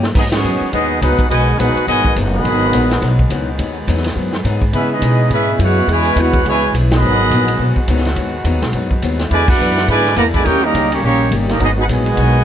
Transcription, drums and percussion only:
0.03 snare
0.15 kick, crash
0.32 snare, ride
0.44 hi-hat pedal
0.73 kick, ride
1.01 kick, hi-hat pedal, ride
1.19 kick, ride
1.31 ride
1.59 kick, hi-hat pedal, ride
1.77 ride
1.87 kick, ride
2.05 kick
2.16 kick, hi-hat pedal, ride
2.45 kick, ride
2.73 kick, hi-hat pedal, ride
2.91 snare, ride
3.02 kick, snare, ride
3.19 kick
3.30 kick, hi-hat pedal, ride
3.59 kick, ride
3.88 kick, hi-hat pedal, ride
3.97 snare
4.04 snare, ride
4.16 kick
4.33 snare
4.44 kick, hi-hat pedal, ride
4.62 kick
4.73 kick, ride
5.02 kick, hi-hat pedal, ride
5.30 kick, ride
5.59 kick, hi-hat pedal, ride
5.88 kick, ride
6.05 ride
6.16 kick, hi-hat pedal, ride
6.34 kick, ride
6.45 kick, ride
6.74 kick, hi-hat pedal, ride
6.92 snare, ride
7.31 kick, hi-hat pedal, ride
7.48 ride
7.59 kick
7.76 kick
7.88 kick, hi-hat pedal, ride
7.98 snare
8.05 snare, ride
8.16 kick, ride
8.45 kick, hi-hat pedal, ride
8.62 snare, ride
8.73 kick, ride
8.91 kick
9.02 kick, hi-hat pedal, ride
9.19 snare, ride
9.31 kick, ride
9.48 kick, crash
9.59 hi-hat pedal
9.77 snare
9.88 kick, ride
10.05 snare
10.16 kick, hi-hat pedal, ride
10.34 kick, ride
10.46 kick, ride
10.74 kick, hi-hat pedal, ride
10.92 ride
11.03 kick
11.32 kick, hi-hat pedal, ride
11.49 snare, ride
11.60 kick, ride
11.89 kick, hi-hat pedal, ride
12.06 ride
12.17 kick, ride

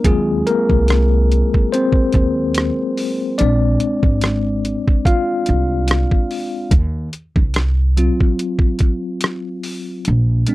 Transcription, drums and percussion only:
0.04 kick, closed hi-hat
0.47 closed hi-hat
0.69 kick
0.88 cross-stick, closed hi-hat
1.32 closed hi-hat
1.54 kick
1.74 closed hi-hat
1.92 kick
2.12 kick, closed hi-hat
2.54 cross-stick, closed hi-hat
2.97 open hi-hat
3.39 closed hi-hat
3.80 closed hi-hat
4.03 kick
4.21 cross-stick, closed hi-hat
4.65 closed hi-hat
4.88 kick
5.05 kick, closed hi-hat
5.46 closed hi-hat
5.88 cross-stick, closed hi-hat
6.11 kick
6.31 open hi-hat
6.71 kick, closed hi-hat
7.13 closed hi-hat
7.36 kick
7.54 cross-stick, closed hi-hat
7.97 closed hi-hat
8.20 kick
8.39 closed hi-hat
8.59 kick
8.79 kick, closed hi-hat
9.21 cross-stick, closed hi-hat
9.63 open hi-hat
10.05 closed hi-hat
10.47 closed hi-hat

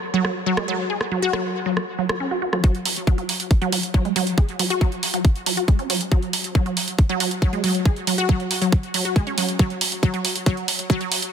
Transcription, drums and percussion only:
0.25 cross-stick
0.57 cross-stick
1.01 cross-stick
1.33 cross-stick
1.77 cross-stick
2.09 cross-stick
2.53 cross-stick
2.64 kick, closed hi-hat
2.75 closed hi-hat
2.85 open hi-hat
2.96 closed hi-hat
3.07 kick, closed hi-hat
3.18 closed hi-hat
3.29 open hi-hat
3.40 closed hi-hat
3.51 kick, closed hi-hat
3.62 closed hi-hat
3.72 open hi-hat
3.83 closed hi-hat
3.94 kick, closed hi-hat
4.05 closed hi-hat
4.16 open hi-hat
4.27 closed hi-hat
4.38 kick, closed hi-hat
4.49 closed hi-hat
4.59 open hi-hat
4.70 closed hi-hat
4.81 kick, closed hi-hat
4.92 closed hi-hat
5.03 open hi-hat
5.14 closed hi-hat
5.25 kick, closed hi-hat
5.36 closed hi-hat
5.46 open hi-hat
5.57 closed hi-hat
5.68 kick, closed hi-hat
5.79 closed hi-hat
5.90 open hi-hat
6.01 closed hi-hat
6.12 kick, closed hi-hat
6.22 closed hi-hat
6.33 open hi-hat
6.44 closed hi-hat
6.55 kick, closed hi-hat
6.66 closed hi-hat
6.77 open hi-hat
6.88 closed hi-hat
6.99 kick, closed hi-hat
7.09 closed hi-hat
7.20 open hi-hat
7.31 closed hi-hat
7.42 kick, closed hi-hat
7.53 closed hi-hat
7.64 open hi-hat
7.75 closed hi-hat
7.85 kick, closed hi-hat
7.96 closed hi-hat
8.07 open hi-hat
8.18 closed hi-hat
8.29 kick, closed hi-hat
8.40 closed hi-hat
8.51 open hi-hat
8.62 closed hi-hat
8.72 kick, closed hi-hat
8.83 closed hi-hat
8.94 open hi-hat
9.05 closed hi-hat
9.16 kick, closed hi-hat
9.27 closed hi-hat
9.38 open hi-hat
9.49 closed hi-hat
9.59 kick, closed hi-hat
9.70 closed hi-hat
9.81 open hi-hat
9.92 closed hi-hat
10.03 kick, closed hi-hat
10.14 closed hi-hat
10.25 open hi-hat
10.36 closed hi-hat
10.46 kick, closed hi-hat
10.57 closed hi-hat
10.68 open hi-hat
10.79 closed hi-hat
10.90 kick, closed hi-hat
11.01 closed hi-hat
11.12 open hi-hat
11.22 closed hi-hat

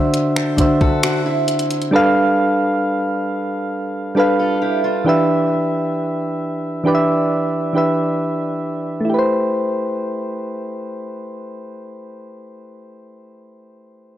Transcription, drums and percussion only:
0.14 closed hi-hat
0.36 finger snap
0.58 kick, closed hi-hat
0.81 kick
1.03 finger snap, closed hi-hat
1.48 closed hi-hat
1.59 closed hi-hat
1.71 closed hi-hat
1.82 closed hi-hat

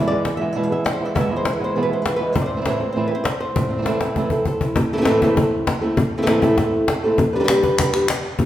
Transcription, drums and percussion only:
0.25 cajon slap
0.72 cajon slap
0.86 cajon slap
1.16 cajon bass
1.45 cajon slap
1.76 cajon slap
2.06 cajon slap
2.36 cajon bass
2.66 cajon slap
3.25 cajon slap
3.56 cajon bass
3.86 cajon slap
4.01 cajon slap
4.16 cajon bass
4.30 cajon bass
4.45 cajon bass
4.61 cajon bass
4.76 cajon bass
5.05 cajon slap
5.22 cajon bass
5.37 cajon bass
5.67 cajon bass, cajon slap
5.83 cajon slap
5.97 cajon bass
6.27 cajon slap
6.42 cajon bass
6.58 cajon bass, cajon slap
6.88 cajon slap
7.03 cajon slap
7.18 cajon bass
7.48 cajon slap, clap
7.64 cajon bass
7.79 cajon bass, clap
7.94 clap
8.08 cajon slap, clap
8.39 cajon bass

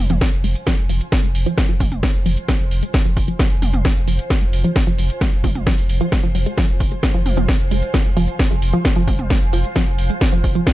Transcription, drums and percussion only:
0.10 closed hi-hat, mid tom
0.21 kick, snare, closed hi-hat
0.44 open hi-hat
0.55 closed hi-hat
0.67 kick, snare, closed hi-hat
0.89 open hi-hat
1.01 closed hi-hat
1.12 kick, snare, closed hi-hat
1.35 open hi-hat
1.46 closed hi-hat
1.58 kick, snare, closed hi-hat, mid tom
1.80 kick, mid tom, open hi-hat
1.92 closed hi-hat, mid tom
2.03 kick, snare, closed hi-hat
2.26 open hi-hat
2.37 closed hi-hat
2.49 kick, snare, closed hi-hat
2.71 open hi-hat
2.83 closed hi-hat
2.94 kick, snare, closed hi-hat
3.17 kick, open hi-hat
3.28 closed hi-hat
3.39 kick, snare, closed hi-hat, mid tom
3.62 mid tom, open hi-hat
3.74 closed hi-hat, mid tom
3.85 kick, snare, closed hi-hat
4.08 open hi-hat
4.19 closed hi-hat
4.30 kick, snare, closed hi-hat
4.53 open hi-hat
4.65 closed hi-hat
4.76 kick, snare, closed hi-hat
4.99 open hi-hat
5.10 closed hi-hat
5.21 kick, snare, closed hi-hat, mid tom
5.44 kick, mid tom, open hi-hat
5.55 closed hi-hat, mid tom
5.67 kick, snare, closed hi-hat
5.78 open hi-hat
5.89 open hi-hat
6.01 closed hi-hat
6.12 kick, snare, closed hi-hat
6.35 open hi-hat
6.46 closed hi-hat
6.58 kick, snare, closed hi-hat
6.80 kick, open hi-hat
6.92 closed hi-hat
7.03 kick, snare, closed hi-hat, mid tom
7.26 mid tom, open hi-hat
7.37 closed hi-hat, mid tom
7.49 kick, snare, closed hi-hat
7.71 open hi-hat
7.83 closed hi-hat
7.94 kick, snare, closed hi-hat
8.17 open hi-hat
8.28 closed hi-hat
8.39 kick, snare, closed hi-hat
8.62 open hi-hat
8.74 closed hi-hat
8.85 kick, snare, closed hi-hat, mid tom
9.08 kick, mid tom, open hi-hat
9.19 closed hi-hat, mid tom
9.30 kick, snare, closed hi-hat
9.53 open hi-hat
9.64 closed hi-hat
9.76 kick, snare, closed hi-hat
9.98 open hi-hat
10.10 closed hi-hat
10.21 kick, snare, closed hi-hat
10.44 kick, open hi-hat
10.55 closed hi-hat
10.67 kick, snare, closed hi-hat, mid tom

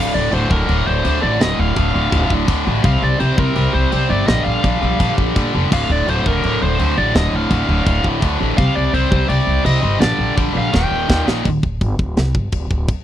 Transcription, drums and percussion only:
0.32 china
0.51 kick
0.69 china
1.05 china
1.41 snare, china
1.76 kick, china
2.12 kick, china
2.30 kick
2.48 kick, china
2.84 kick, china
3.20 china
3.38 kick
3.56 china
3.92 china
4.28 snare, china
4.64 kick, china
5.00 kick, china
5.18 kick
5.36 kick, china
5.72 kick, china, crash
6.08 china
6.26 kick
6.44 china
6.79 china
7.15 snare, china
7.50 kick, china
7.87 kick, china
8.04 kick
8.22 kick, china
8.58 kick, china
8.94 china
9.12 kick
9.30 china
9.66 china
10.01 snare, china
10.37 kick, china
10.74 kick, snare
11.10 kick, snare
11.28 snare
11.45 kick, china
11.63 kick
11.81 kick, china
11.99 kick
12.17 snare, china
12.35 kick
12.52 kick, china
12.71 kick
12.88 kick, china

